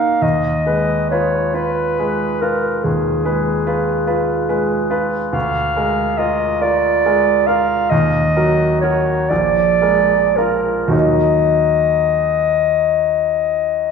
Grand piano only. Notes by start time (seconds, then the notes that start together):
Already playing: A#3 D#4 A#4
0.22 D#2
0.66 G#3 B4
1.11 F4 B4
1.54 F4 B4
1.99 G#3 B4
2.42 F4 B4
2.84 D#2
3.25 G#3 B4
3.67 F4 B4
4.07 F4 B4
4.49 G#3 B4
4.90 F4 B4
5.33 D2
5.76 G#3 A#4
6.19 F4 A#4
6.61 F4 A#4
7.06 G#3 A#4
7.48 F4 A#4
7.92 D#2
8.37 F#3 A#4
8.83 F#4 A#4
9.31 A#1
9.82 G#3 A#4
10.38 F4 A#4
10.88 D#2 F#3 D#4 A#4